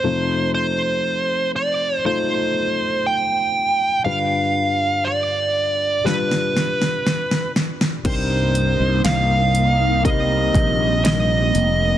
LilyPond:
<<
  \new Staff \with { instrumentName = "Lead electric guitar" } { \time 4/4 \key c \minor \tempo 4 = 60 c''8 c''4 d''8 c''4 g''4 | f''4 d''4 b'4. r8 | c''4 f''4 ees''4 ees''4 | }
  \new Staff \with { instrumentName = "Grand piano" } { \time 4/4 \key c \minor <a ees' f' c''>2 <a ees' f' c''>2 | <g d' f' b'>2 <g d' f' b'>2 | <g c' ees' bes'>2 <g c' ees' bes'>2 | }
  \new Staff \with { instrumentName = "Grand piano" } { \clef bass \time 4/4 \key c \minor <f, c>1 | <g, d>1 | g,4. r2 r8 | }
  \new Staff \with { instrumentName = "Analog synth pad" } { \clef bass \time 4/4 \key c \minor r1 | r1 | <c g bes ees'>1 | }
  \new Staff \with { instrumentName = "Fretless electric bass" } { \clef bass \time 4/4 \key c \minor r1 | r1 | c,8. c,16 c,4. bes,,4 f,,8 | }
  \new DrumStaff \with { instrumentName = "Drums" } \drummode { \time 4/4 r4 r4 r4 r4 | r4 r4 sn16 sn16 sn16 sn16 sn16 sn16 sn16 sn16 | <cymc hh bd>8 hh8 <hh sn>8 hh8 <hh bd>8 <hh bd>8 <hh sn>8 hh8 | }
>>